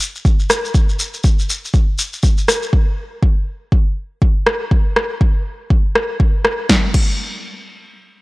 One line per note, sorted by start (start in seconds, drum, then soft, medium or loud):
0.00 shekere medium
0.15 shekere soft
0.25 kick loud
0.25 shekere medium
0.39 shekere soft
0.50 cross-stick medium
0.50 shekere medium
0.65 shekere soft
0.74 kick loud
0.74 shekere soft
0.89 shekere soft
0.99 shekere medium
1.14 shekere soft
1.24 kick loud
1.24 shekere soft
1.39 shekere soft
1.50 shekere medium
1.65 shekere soft
1.73 kick loud
1.73 shekere medium
1.99 shekere medium
2.13 shekere soft
2.23 kick loud
2.23 shekere soft
2.38 shekere soft
2.48 cross-stick medium
2.48 shekere medium
2.62 shekere soft
2.73 kick loud
3.23 kick loud
3.72 kick loud
4.22 kick loud
4.47 cross-stick medium
4.71 kick loud
4.96 cross-stick medium
5.21 kick loud
5.70 kick loud
5.95 cross-stick medium
6.20 kick loud
6.45 cross-stick medium
6.69 kick loud
6.69 snare medium
6.94 kick loud
6.94 crash medium